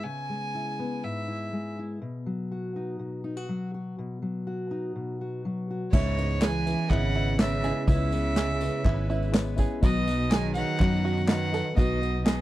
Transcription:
Already playing: steel-string acoustic guitar B3
0.04 steel-string acoustic guitar C#3, fiddle G#5
0.30 steel-string acoustic guitar G#3
0.55 steel-string acoustic guitar E4
0.79 steel-string acoustic guitar B3
1.04 steel-string acoustic guitar G#2, fiddle E5
1.28 steel-string acoustic guitar E4
1.53 steel-string acoustic guitar G#3
1.79 steel-string acoustic guitar E4
2.02 steel-string acoustic guitar B2
2.26 steel-string acoustic guitar F#3
2.51 steel-string acoustic guitar F#4
2.76 steel-string acoustic guitar D#4
2.99 steel-string acoustic guitar B2
3.24 steel-string acoustic guitar D#4
3.37 steel-string acoustic guitar F#4
3.49 steel-string acoustic guitar F#3
3.74 steel-string acoustic guitar F#4
3.99 steel-string acoustic guitar B2
4.22 steel-string acoustic guitar F#3
4.47 steel-string acoustic guitar F#4
4.71 steel-string acoustic guitar D#4
4.96 steel-string acoustic guitar B2
5.21 steel-string acoustic guitar F#4
5.45 steel-string acoustic guitar F#3
5.71 steel-string acoustic guitar F#4
5.91 fingered electric bass C#2, felt piano C#2 C#3 G#3 C#4 E4 B4 C#5, cello G#2, steel-string acoustic guitar C#3 G#3 B3 E4 B4, five-string banjo E4, fiddle C#5, kick, crash, tambourine
6.17 felt piano G#3 C#4 E4 B4 C#5, steel-string acoustic guitar B3 E4 B4, tambourine
6.31 tambourine
6.41 cello E3, felt piano G#3 C#4 E4 B4 C#5, steel-string acoustic guitar G#3 B3 E4 B4, five-string banjo G#4, fiddle G#5, snare, clap, tambourine
6.65 felt piano G#3 C#4 E4 B4 E5, steel-string acoustic guitar B3 E4 B4, tambourine
6.89 fingered electric bass G#1, steel-string acoustic guitar C#3 G#3 B3 E4 B4, cello C#3, felt piano G#3 C#4 E4 B4 D#5, five-string banjo E4, fiddle F#5, kick, clap
7.15 felt piano G#3 C#4 E4 B4 D#5, five-string banjo E4, tambourine
7.28 tambourine
7.39 cello C#3, felt piano G#3 C#4 E4 B4 C#5, steel-string acoustic guitar G#3 B3 E4 B4, fiddle E5, snare, clap, tambourine
7.63 felt piano G#3 C#4 E4 B4 D#5, five-string banjo G#4, tambourine
7.88 felt piano C#2 C#3 G#3 C#4 E4 B4 C#5, fingered electric bass C#2, steel-string acoustic guitar C#3 G#3 B3 E4 B4, five-string banjo E4, fiddle E5, kick, tambourine
7.92 cello C#3
8.11 felt piano G#3 C#4 E4 B4 E5, steel-string acoustic guitar B3 E4 B4, tambourine
8.25 tambourine
8.35 steel-string acoustic guitar G#3 B3 E4 B4, felt piano G#3 C#4 E4 B4 D#5, five-string banjo G#4, snare, clap, tambourine
8.61 felt piano G#3 C#4 E4 B4 C#5, steel-string acoustic guitar B3 E4 B4, tambourine
8.84 fingered electric bass G#1, steel-string acoustic guitar C#3 G#3 B3 E4 B4, felt piano G#3 C#4 E4 B4 C#5, five-string banjo E4, kick, clap
9.09 felt piano G#3 C#4 E4 B4 C#5, five-string banjo E4, tambourine
9.22 tambourine
9.32 felt piano G#3 C#4 E4 B4 C#5, steel-string acoustic guitar G#3 B3 E4 B4, snare, clap, tambourine
9.46 tambourine
9.56 felt piano G#3 C#4 E4 B4 C#5, five-string banjo G#4, kick, tambourine
9.81 felt piano B1 B2 F#3 B3 D#4 B4 D#5, fingered electric bass B1, steel-string acoustic guitar B2 D#3 F#3 B3 D#4 B4, cello B2, five-string banjo F#4, fiddle D#5, kick, tambourine
10.06 felt piano F#3 B3 D#4 B4 D#5, steel-string acoustic guitar F#3 B3 D#4 B4, tambourine
10.20 tambourine
10.30 cello D#3, felt piano F#3 D#4 C#5, steel-string acoustic guitar F#3 B3 D#4 B4, five-string banjo G#4, fiddle G#5, snare, clap, tambourine
10.53 cello D#3, felt piano F#3 B3 D#4 B4 C#5, steel-string acoustic guitar D#4 B4, fiddle F#5, tambourine
10.57 steel-string acoustic guitar F#3 B3
10.80 fingered electric bass F#2, steel-string acoustic guitar B2 D#3 F#3 B3 D#4 B4, felt piano F#3 B3 D#4 C#5, five-string banjo F#4, kick, clap
11.04 felt piano F#3 B3 D#4 B4, five-string banjo F#4, tambourine
11.18 tambourine
11.27 cello D#3, felt piano F#3 B3 D#4 B4 D#5, steel-string acoustic guitar F#3 B3 D#4 B4, fiddle F#5, snare, clap, tambourine
11.52 felt piano F#3 B3 D#4 B4 D#5, five-string banjo A4, tambourine
11.75 felt piano B1 B2 F#3 B3 D#4 B4 D#5, fingered electric bass B1, cello B2, steel-string acoustic guitar B2 D#3 F#3 B3 D#4 B4, five-string banjo F#4, fiddle D#5, kick, tambourine
12.00 felt piano F#3 B3 D#4 B4 F#5, steel-string acoustic guitar F#3 B3 D#4 B4, tambourine
12.24 cello B2, felt piano F#3 B3 D#4 D#5, steel-string acoustic guitar F#3 B3 D#4, five-string banjo G#4, fiddle D#5, snare, clap
12.28 steel-string acoustic guitar B4, tambourine

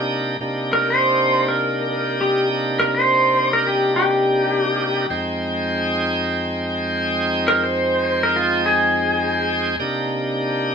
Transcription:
Already playing: tonewheel organ C3 A#3 D4 D#4 G4
0.41 tonewheel organ C3 A#3 D4 D#4 G4
0.73 electric slide guitar A#4
0.90 electric slide guitar C5
1.48 electric slide guitar A#4
2.21 electric slide guitar G4
2.80 electric slide guitar A#4
2.95 electric slide guitar C5
3.53 electric slide guitar A#4
3.67 electric slide guitar G4
3.96 electric slide guitar G4
5.10 tonewheel organ F2 G#3 C4 D#4 G5
7.48 electric slide guitar A#4
7.64 electric slide guitar C5
8.23 electric slide guitar A#4
8.36 electric slide guitar F4
8.66 electric slide guitar G#4
9.79 tonewheel organ C3 A#3 D4 D#4 G4

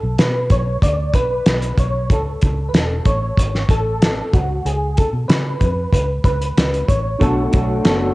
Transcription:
Already playing: synth keys A4
0.03 fingered electric bass B1
0.18 fingered electric bass B2, synth keys B4, snare, closed hi-hat
0.50 fingered electric bass B1, synth keys C#5, kick, closed hi-hat
0.82 fingered electric bass D2, synth keys D5, kick, closed hi-hat
1.14 fingered electric bass B1, synth keys B4, kick, closed hi-hat
1.46 fingered electric bass B1, snare, closed hi-hat
1.62 closed hi-hat
1.77 fingered electric bass B1, synth keys C#5, kick, closed hi-hat
2.10 fingered electric bass C#2, synth keys A4, kick, closed hi-hat
2.42 fingered electric bass C#2, kick, closed hi-hat
2.69 synth keys B4
2.73 fingered electric bass E1, synth keys A4, snare, closed hi-hat
3.05 fingered electric bass A1, synth keys C#5, kick, closed hi-hat
3.37 fingered electric bass G#1, kick, closed hi-hat
3.55 snare
3.69 fingered electric bass A1, synth keys A4, kick, closed hi-hat
4.02 snare, closed hi-hat
4.33 fingered electric bass C#2, synth keys F#4, kick, closed hi-hat
4.65 fingered electric bass C#2, synth keys G#4, closed hi-hat
4.97 synth keys A4, kick, closed hi-hat
5.13 fingered electric bass B2
5.28 fingered electric bass C#3, synth keys B4, snare, closed hi-hat
5.59 fingered electric bass F2, synth keys B4, kick, closed hi-hat
5.92 fingered electric bass C#2, synth keys B4, kick, closed hi-hat
6.24 fingered electric bass C#2, synth keys B4, kick, closed hi-hat
6.42 closed hi-hat
6.57 fingered electric bass C#2, snare, closed hi-hat
6.74 closed hi-hat
6.88 fingered electric bass A1, synth keys C#5, kick, closed hi-hat
7.19 fingered electric bass B1, clean electric guitar B2 F#3 A3 D4 F#4, tonewheel organ D4 F#4 A4 C#5, synth keys A4, kick, closed hi-hat
7.51 fingered electric bass B1, clean electric guitar A3 D4 F#4, tonewheel organ D4 F#4 A4 C#5, kick, closed hi-hat
7.84 fingered electric bass F#1, clean electric guitar B2 F#3 A3 D4 F#4, synth keys A4, snare, closed hi-hat

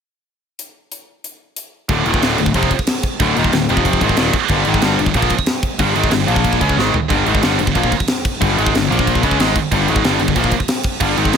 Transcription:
0.59 closed hi-hat
0.92 closed hi-hat
1.24 closed hi-hat
1.56 closed hi-hat
1.89 picked electric bass D1, distorted electric guitar D2 A2 D3, kick, crash
2.05 picked electric bass D#1, distorted electric guitar D#2 A#2 D#3, crash
2.14 kick
2.22 picked electric bass D1, distorted electric guitar D2 A2 D3, snare, crash
2.38 picked electric bass D1, distorted electric guitar D2 A2, crash
2.46 kick
2.54 picked electric bass F1, distorted electric guitar F2 C3 F3, kick, crash
2.63 kick
2.71 kick, crash
2.79 kick
2.87 snare, crash
3.03 kick, crash
3.20 picked electric bass D1, distorted electric guitar D2 A2 D3, kick, crash
3.36 picked electric bass D#1, distorted electric guitar D#2 A#2 D#3, crash
3.44 kick
3.52 picked electric bass D1, distorted electric guitar D2 A2, snare, crash
3.69 picked electric bass F1, distorted electric guitar F2 C3 F3, crash
3.77 kick
3.85 kick, crash
3.93 kick
4.01 picked electric bass G#1, distorted electric guitar G#2 D#3 G#3, kick, crash
4.09 kick
4.17 picked electric bass D#1, distorted electric guitar D#2 A#2 D#3, snare, crash
4.33 muted picked electric bass stroke, muted distorted electric guitar stroke, kick, crash
4.48 picked electric bass G1, distorted electric guitar G2 D3 G3, kick, crash
4.65 picked electric bass G#1, distorted electric guitar G#2 D#3 G#3, crash
4.74 kick
4.82 picked electric bass G1, distorted electric guitar G2 D3 G3, snare, crash
4.99 picked electric bass G1, distorted electric guitar G2 D3, crash
5.06 kick
5.14 picked electric bass A#1, distorted electric guitar A#2 F3 A#3, kick, crash
5.22 kick
5.30 kick, crash
5.39 kick
5.46 snare, crash
5.63 kick, crash
5.79 picked electric bass G1, distorted electric guitar G2 D3 G3, kick, crash
5.95 picked electric bass G#1, distorted electric guitar G#2 D#3 G#3, crash
6.04 kick
6.11 picked electric bass G1, distorted electric guitar G2 D3, snare, crash
6.27 picked electric bass A#1, distorted electric guitar A#2 F3 A#3, crash
6.36 kick
6.44 kick, crash
6.53 kick
6.60 picked electric bass C#2, distorted electric guitar C#3 G#3 C#4, kick, crash
6.69 kick
6.77 picked electric bass G#1, distorted electric guitar G#2 D#3 G#3, snare
6.93 muted picked electric bass stroke, muted distorted electric guitar stroke, floor tom
7.10 picked electric bass G1, distorted electric guitar G2 D3 G3, kick, crash
7.26 picked electric bass G#1, distorted electric guitar G#2 D#3 G#3, crash
7.35 kick
7.42 picked electric bass G1, distorted electric guitar G2 D3 G3, snare, crash
7.59 picked electric bass G1, distorted electric guitar G2 D3, crash
7.67 kick
7.75 picked electric bass A#1, distorted electric guitar A#2 F3 A#3, kick, crash
7.84 kick
7.92 kick, crash
8.00 kick
8.08 snare, crash
8.25 kick, crash
8.40 picked electric bass G1, distorted electric guitar G2 D3 G3, kick, crash
8.57 picked electric bass G#1, distorted electric guitar G#2 D#3 G#3, crash
8.66 kick
8.75 picked electric bass G1, distorted electric guitar G2 D3, snare, crash
8.90 picked electric bass A#1, distorted electric guitar A#2 F3 A#3, crash
8.99 kick
9.07 kick, crash
9.15 kick
9.23 picked electric bass C#2, distorted electric guitar C#3 G#3 C#4, kick, crash
9.31 kick
9.39 picked electric bass G#1, distorted electric guitar G#2 D#3 G#3, snare, crash
9.56 muted picked electric bass stroke, muted distorted electric guitar stroke, kick, crash
9.72 picked electric bass G1, distorted electric guitar G2 D3 G3, kick, crash
9.88 picked electric bass G#1, distorted electric guitar G#2 D#3 G#3, crash
9.96 kick
10.04 picked electric bass G1, distorted electric guitar G2 D3 G3, snare, crash
10.19 picked electric bass G1, distorted electric guitar G2 D3, crash
10.28 kick
10.36 picked electric bass A#1, distorted electric guitar A#2 F3 A#3, kick, crash
10.44 kick
10.51 kick, crash
10.60 kick
10.68 snare, crash
10.83 kick, crash
11.00 picked electric bass G1, distorted electric guitar G2 D3 G3, kick, crash
11.17 picked electric bass G#1, distorted electric guitar G#2 D#3 G#3, crash
11.25 kick
11.33 distorted electric guitar G2, snare, crash

